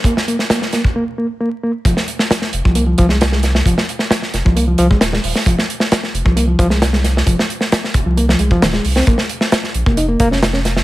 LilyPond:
<<
  \new Staff \with { instrumentName = "Reed electric piano" } { \clef bass \time 4/4 \key f \minor \tempo 4 = 133 bes16 r16 bes16 r16 bes16 r16 bes16 r16 bes16 r16 bes16 r16 bes16 r16 bes16 r16 | f16 r4. f16 bes16 f16 f16 aes16 r16 aes16 r8 | f16 r4. f16 bes16 f16 f16 aes16 r16 aes16 r8 | f16 r4. f16 bes16 f16 f16 aes16 r16 aes16 r8 |
f16 r4. f16 bes16 f16 aes16 f16 ees16 aes16 r16 c'16 | bes16 r4. bes16 ees'16 bes16 bes16 des'16 r16 des'16 r8 | }
  \new Staff \with { instrumentName = "Sub bass" } { \clef bass \time 4/4 \key f \minor r1 | f,,16 r4 r16 f,,16 c,8. c,4. | f,,16 r4 r16 f,,16 c,8. c,8 ees,,8 ees,,16 r16 | f,,16 r4 r16 f,,16 c,8. c,4. |
f,,16 r4 r16 f,,16 c,8. c,8 ees,,8 c,8 | bes,,16 r4 r16 bes,,16 f,,8. f,,4. | }
  \new DrumStaff \with { instrumentName = "Drums" } \drummode { \time 4/4 <hh bd>16 sn16 hh16 sn16 <hh sn>16 sn16 <hh sn>16 bd16 r4 r4 | <hh bd>16 sn16 hh16 sn16 <hh sn>16 sn16 hh16 bd16 hh8 <hh bd>16 sn16 <hh sn>16 sn16 <hh sn>16 sn16 | <hh bd>16 sn16 hh16 sn16 <hh sn>16 sn16 <hh sn>16 bd16 hh8 hh16 bd16 <hh sn>16 sn16 hho16 sn16 | <hh bd>16 sn16 hh16 sn16 <hh sn>16 sn16 hh16 bd16 hh8 <hh bd>16 sn16 <hh sn>16 sn16 <hh sn>16 sn16 |
<hh bd>16 sn16 hh16 sn16 <hh sn>16 sn16 <hh bd>8 hh16 sn16 hh16 bd16 <hh sn>16 sn16 hho16 sn16 | <hh bd>16 sn16 hh16 sn16 <hh sn>16 sn16 hh16 bd16 hh8 <hh bd>16 sn16 <hh sn>16 sn16 <hh sn>16 sn16 | }
>>